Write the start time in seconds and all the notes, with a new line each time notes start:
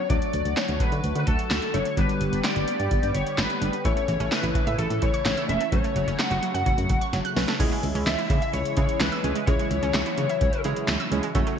0.10 D2 D3 F#3 A3 D4 F#4 D5, kick, closed hi-hat
0.22 closed hi-hat
0.33 D2, closed hi-hat
0.45 D2, closed hi-hat
0.57 C#5, snare, clap, closed hi-hat
0.68 D2, closed hi-hat
0.80 B4, kick, closed hi-hat
0.92 D3, closed hi-hat
1.04 D2, closed hi-hat
1.15 D3, closed hi-hat
1.20 B4
1.27 D2 A4, kick, closed hi-hat
1.39 closed hi-hat
1.50 D2, snare, clap, closed hi-hat
1.62 closed hi-hat
1.74 F#1 F#3 A3 D4 A4 C#5, closed hi-hat
1.85 closed hi-hat
1.97 G1 G3 B3 D4 G4 B4, kick, closed hi-hat
2.09 closed hi-hat
2.21 G1, closed hi-hat
2.33 G1, closed hi-hat
2.44 D5, snare, clap, closed hi-hat
2.56 G1, closed hi-hat
2.68 closed hi-hat
2.80 G2, closed hi-hat
2.91 G1, kick, closed hi-hat
3.03 G2, closed hi-hat
3.15 G1 C#5, closed hi-hat
3.27 closed hi-hat
3.38 G1 B4, snare, clap, closed hi-hat
3.50 closed hi-hat
3.61 G1 G3 B3 D4 G4, closed hi-hat
3.73 closed hi-hat
3.85 A1 C#3 E3 A3 C#4 E4 A4 C#5, kick, closed hi-hat
3.97 A3, closed hi-hat
4.08 A1 E3, closed hi-hat
4.20 A1 C#4, closed hi-hat
4.32 E3 B4, snare, clap, closed hi-hat
4.43 A1 E4, closed hi-hat
4.55 E3, kick, closed hi-hat
4.67 A2 E5, closed hi-hat
4.79 A1 E3 A4, closed hi-hat
4.90 A2, closed hi-hat
5.02 A1 E3 C#5, kick, closed hi-hat
5.14 C#6, closed hi-hat
5.25 A1 E3, snare, clap, closed hi-hat
5.37 E6, closed hi-hat
5.49 E1 E3 A3 C#4 E4 A4 E5, closed hi-hat
5.61 A3, closed hi-hat
5.72 F#1 C#3 F#3 A3 C#4 F#4 A4 C#5, kick, closed hi-hat
5.84 A3, closed hi-hat
5.96 F#1 F#3, closed hi-hat
6.07 F#1 C#4, closed hi-hat
6.19 F#3 F#5, snare, clap, closed hi-hat
6.31 F#1 F#4, closed hi-hat
6.43 F#3, closed hi-hat
6.54 F#2 F#5, closed hi-hat
6.66 F#1 F#3, kick, closed hi-hat
6.78 F#2, closed hi-hat
6.89 F#1 F#3, kick, closed hi-hat
7.01 C#6, closed hi-hat
7.13 F#1 F#3, snare, closed hi-hat
7.25 F#6, closed hi-hat
7.36 B1 F#3 A3 C#4 F#4 B4, snare, open hi-hat
7.48 A3, snare, closed hi-hat
7.60 C#2 C#3 E3 G#3 C#4 E4 G#4 C#5, kick, closed hi-hat, crash
7.72 G#3, closed hi-hat
7.83 C#2, closed hi-hat
7.95 C#2 C#4, closed hi-hat
8.07 C#2 E3 E5, snare, clap, closed hi-hat
8.19 E4, closed hi-hat
8.30 C#3 E3, kick, closed hi-hat
8.42 E5, closed hi-hat
8.53 C#2 E3 C#5, closed hi-hat
8.65 closed hi-hat
8.77 C#3 E3 G#3 C#4 E4 G#4 C#5, kick, closed hi-hat
8.89 closed hi-hat
9.00 C#2 E3 B4, snare, clap, closed hi-hat
9.12 E6, closed hi-hat
9.24 C#2 G#3 C#4 E4 G#4 C#5, closed hi-hat
9.35 G#3, closed hi-hat
9.47 C#2 E3 F#3 G#3 C#4 E4 G#4 C#5, kick, closed hi-hat
9.59 G#3, closed hi-hat
9.71 C#2, closed hi-hat
9.83 C#2 C#4, closed hi-hat
9.94 C#2 E3 C#5, snare, clap, closed hi-hat
10.06 E4, closed hi-hat
10.18 C#3 E3, closed hi-hat
10.30 E5, closed hi-hat
10.41 C#2 E3, kick, closed hi-hat
10.53 closed hi-hat
10.64 C#3 E3 G#3 C#4 E4 G#4 C#5, closed hi-hat
10.76 closed hi-hat
10.88 C#2 E3, snare, clap, closed hi-hat
11.00 E6, closed hi-hat
11.12 C#2 G#3 C#4 E4 G#4 C#5, closed hi-hat
11.23 G#3, closed hi-hat
11.35 F#1 F#3 A3 C#4 F#4 A4 C#5, kick, closed hi-hat
11.47 A3, closed hi-hat